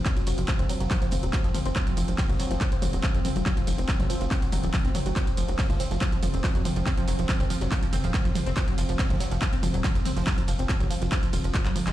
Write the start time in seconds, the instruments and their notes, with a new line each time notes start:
Already playing: ambient pad F3 C4
0.06 synth arpeggio sound C4, kick, clap, closed hi-hat, ride, tambourine
0.17 synth arpeggio sound F#3, closed hi-hat, tambourine
0.27 analog synth bass F1, synth arpeggio sound F#3, closed hi-hat, open hi-hat, ride, tambourine
0.38 analog synth bass F1, synth arpeggio sound F3, closed hi-hat, tambourine
0.48 synth arpeggio sound F3, kick, snare, clap, closed hi-hat, ride, tambourine
0.59 analog synth bass F1, synth arpeggio sound C4, snare, closed hi-hat, mid tom, tambourine
0.69 synth arpeggio sound F#3, closed hi-hat, open hi-hat, ride, tambourine
0.80 analog synth bass F1, synth arpeggio sound F#3, snare, closed hi-hat, tambourine
0.90 synth arpeggio sound F3, kick, clap, closed hi-hat, tambourine
1.02 synth arpeggio sound F3, closed hi-hat, tambourine
1.11 analog synth bass F1, synth arpeggio sound C4, closed hi-hat, open hi-hat, mid tom, ride, tambourine
1.23 analog synth bass D#1, synth arpeggio sound F#3, closed hi-hat, tambourine
1.33 synth arpeggio sound F#3, kick, snare, clap, closed hi-hat, ride, tambourine
1.44 analog synth bass F2, synth arpeggio sound F3, snare, closed hi-hat, tambourine
1.54 synth arpeggio sound F3, snare, closed hi-hat, open hi-hat, mid tom, ride, tambourine
1.65 analog synth bass F1, synth arpeggio sound C4, snare, closed hi-hat, tambourine
1.76 synth arpeggio sound F#3, kick, clap, closed hi-hat, ride, tambourine
1.87 synth arpeggio sound F#3, closed hi-hat, tambourine
1.97 analog synth bass F1, synth arpeggio sound F3, closed hi-hat, open hi-hat, ride, tambourine
2.08 analog synth bass F1, synth arpeggio sound F3, closed hi-hat, tambourine
2.18 synth arpeggio sound C4, kick, snare, clap, closed hi-hat, open hi-hat, ride, tambourine
2.29 analog synth bass F1, synth arpeggio sound F#3, closed hi-hat, mid tom, tambourine
2.39 synth arpeggio sound F#3, snare, closed hi-hat, open hi-hat, ride, tambourine
2.51 analog synth bass F1, synth arpeggio sound F3, snare, closed hi-hat, tambourine
2.61 synth arpeggio sound F3, kick, clap, closed hi-hat, ride, tambourine
2.72 synth arpeggio sound C4, closed hi-hat, tambourine
2.82 analog synth bass F1, synth arpeggio sound F#3, closed hi-hat, open hi-hat, mid tom, ride, tambourine
2.93 analog synth bass D#1, synth arpeggio sound F#3, closed hi-hat, tambourine
3.03 synth arpeggio sound F3, kick, snare, clap, closed hi-hat, ride, tambourine
3.14 analog synth bass F2, synth arpeggio sound F3, snare, closed hi-hat, tambourine
3.25 synth arpeggio sound C4, snare, closed hi-hat, open hi-hat, mid tom, ride, tambourine
3.36 analog synth bass F1, synth arpeggio sound F#3, closed hi-hat, tambourine
3.46 synth arpeggio sound F#3, kick, clap, closed hi-hat, ride, tambourine
3.57 synth arpeggio sound F3, closed hi-hat, tambourine
3.67 analog synth bass F1, synth arpeggio sound F3, closed hi-hat, open hi-hat, ride, tambourine
3.78 analog synth bass F1, synth arpeggio sound C4, closed hi-hat, tambourine
3.88 synth arpeggio sound F#3, kick, snare, clap, closed hi-hat, ride, tambourine
4.00 analog synth bass F1, synth arpeggio sound F#3, snare, closed hi-hat, mid tom, tambourine
4.10 synth arpeggio sound F3, closed hi-hat, open hi-hat, ride, tambourine
4.21 analog synth bass F1, synth arpeggio sound F3, snare, closed hi-hat, tambourine
4.31 synth arpeggio sound C4, kick, clap, closed hi-hat, ride, tambourine
4.42 synth arpeggio sound F#3, closed hi-hat, tambourine
4.52 analog synth bass F1, synth arpeggio sound F#3, closed hi-hat, open hi-hat, mid tom, ride, tambourine
4.63 analog synth bass D#1, synth arpeggio sound F3, closed hi-hat, tambourine
4.73 synth arpeggio sound F3, kick, snare, clap, closed hi-hat, tambourine
4.85 analog synth bass F1, synth arpeggio sound C4, snare, closed hi-hat, tambourine
4.94 synth arpeggio sound F#3, snare, closed hi-hat, open hi-hat, mid tom, ride, tambourine
5.06 analog synth bass F1, synth arpeggio sound F#3, snare, closed hi-hat, tambourine
5.16 synth arpeggio sound F3, kick, clap, closed hi-hat, ride, tambourine
5.27 synth arpeggio sound C4, closed hi-hat, tambourine
5.37 analog synth bass F1, synth arpeggio sound F3, closed hi-hat, open hi-hat, ride, tambourine
5.48 analog synth bass F1, synth arpeggio sound F#3, closed hi-hat, tambourine
5.58 synth arpeggio sound F3, kick, snare, clap, closed hi-hat, open hi-hat, ride, tambourine
5.70 analog synth bass F1, synth arpeggio sound F3, closed hi-hat, mid tom, tambourine
5.79 synth arpeggio sound C4, snare, closed hi-hat, open hi-hat, ride, tambourine
5.91 analog synth bass F1, synth arpeggio sound F3, snare, closed hi-hat, tambourine
6.01 synth arpeggio sound F#3, kick, clap, closed hi-hat, tambourine
6.12 synth arpeggio sound F3, closed hi-hat, tambourine
6.23 analog synth bass F1, synth arpeggio sound F3, closed hi-hat, open hi-hat, mid tom, ride, tambourine
6.34 analog synth bass D#1, synth arpeggio sound C4, closed hi-hat, tambourine
6.44 synth arpeggio sound F3, kick, snare, clap, closed hi-hat, ride, tambourine
6.55 analog synth bass F2, synth arpeggio sound F#3, snare, closed hi-hat, tambourine
6.65 synth arpeggio sound F3, snare, closed hi-hat, open hi-hat, mid tom, ride, tambourine
6.76 analog synth bass F1, synth arpeggio sound F3, closed hi-hat, tambourine
6.86 synth arpeggio sound C4, kick, clap, closed hi-hat, ride, tambourine
6.97 synth arpeggio sound F3, closed hi-hat, tambourine
7.08 analog synth bass F1, synth arpeggio sound F#3, closed hi-hat, open hi-hat, ride, tambourine
7.19 analog synth bass F1, synth arpeggio sound F3, closed hi-hat, tambourine
7.29 synth arpeggio sound F3, kick, snare, clap, closed hi-hat, ride, tambourine
7.40 analog synth bass F1, synth arpeggio sound C4, snare, closed hi-hat, mid tom, tambourine
7.50 synth arpeggio sound F3, closed hi-hat, open hi-hat, ride, tambourine
7.61 analog synth bass F1, synth arpeggio sound F#3, snare, closed hi-hat, tambourine
7.71 synth arpeggio sound F3, kick, clap, closed hi-hat, ride, tambourine
7.83 synth arpeggio sound F3, closed hi-hat, tambourine
7.93 analog synth bass F1, synth arpeggio sound C4, closed hi-hat, open hi-hat, mid tom, ride, tambourine
8.04 analog synth bass D#1, synth arpeggio sound F3, closed hi-hat, tambourine
8.14 synth arpeggio sound F#3, kick, snare, clap, closed hi-hat, ride, tambourine
8.25 analog synth bass F2, synth arpeggio sound F3, snare, closed hi-hat, tambourine
8.35 synth arpeggio sound F3, snare, closed hi-hat, open hi-hat, mid tom, ride, tambourine
8.46 analog synth bass F1, synth arpeggio sound C4, snare, closed hi-hat, tambourine
8.56 synth arpeggio sound F3, kick, clap, closed hi-hat, ride, tambourine
8.68 synth arpeggio sound F#3, closed hi-hat, tambourine
8.78 analog synth bass F1, synth arpeggio sound F3, closed hi-hat, open hi-hat, ride, tambourine
8.89 analog synth bass F1, synth arpeggio sound F3, closed hi-hat, tambourine
8.99 synth arpeggio sound C4, kick, snare, clap, closed hi-hat, open hi-hat, ride, tambourine
9.10 analog synth bass F1, synth arpeggio sound F3, closed hi-hat, mid tom, tambourine
9.20 synth arpeggio sound F#3, snare, closed hi-hat, open hi-hat, ride, tambourine
9.31 analog synth bass F1, synth arpeggio sound F3, snare, closed hi-hat, tambourine
9.42 synth arpeggio sound F3, kick, clap, closed hi-hat, ride, tambourine
9.53 synth arpeggio sound C4, closed hi-hat, tambourine
9.63 analog synth bass F1, synth arpeggio sound F3, closed hi-hat, open hi-hat, mid tom, ride, tambourine
9.74 analog synth bass D#1, synth arpeggio sound F#3, closed hi-hat, tambourine
9.84 synth arpeggio sound F3, kick, snare, clap, closed hi-hat, ride, tambourine
9.95 analog synth bass F2, synth arpeggio sound F3, snare, closed hi-hat, tambourine
10.05 synth arpeggio sound C4, snare, open hi-hat, mid tom, ride, tambourine
10.16 analog synth bass F1, synth arpeggio sound F3, snare, closed hi-hat, open hi-hat, tambourine
10.26 synth arpeggio sound F#3, kick, snare, clap, closed hi-hat, open hi-hat, ride, tambourine
10.38 synth arpeggio sound F3, closed hi-hat, tambourine
10.48 analog synth bass F1, synth arpeggio sound F3, closed hi-hat, open hi-hat, ride, tambourine
10.59 analog synth bass F1, synth arpeggio sound C4, closed hi-hat, tambourine
10.69 synth arpeggio sound F3, kick, snare, clap, closed hi-hat, ride, tambourine
10.80 analog synth bass F1, synth arpeggio sound F#3, snare, closed hi-hat, mid tom, tambourine
10.91 synth arpeggio sound F3, closed hi-hat, open hi-hat, ride, tambourine
11.01 analog synth bass F1, synth arpeggio sound F3, snare, closed hi-hat, tambourine
11.12 synth arpeggio sound C4, kick, clap, closed hi-hat, ride, tambourine
11.22 synth arpeggio sound F3, closed hi-hat, tambourine
11.33 analog synth bass D#1, synth arpeggio sound F4, closed hi-hat, open hi-hat, mid tom, ride, tambourine
11.44 analog synth bass F1, synth arpeggio sound F3, closed hi-hat, tambourine
11.54 synth arpeggio sound F3, kick, snare, clap, closed hi-hat, ride, tambourine
11.65 analog synth bass F1, synth arpeggio sound F#3, snare, clap, closed hi-hat, tambourine
11.76 synth arpeggio sound F3, open hi-hat, mid tom, ride, tambourine
11.87 analog synth bass F1, synth arpeggio sound G#3, clap, closed hi-hat, tambourine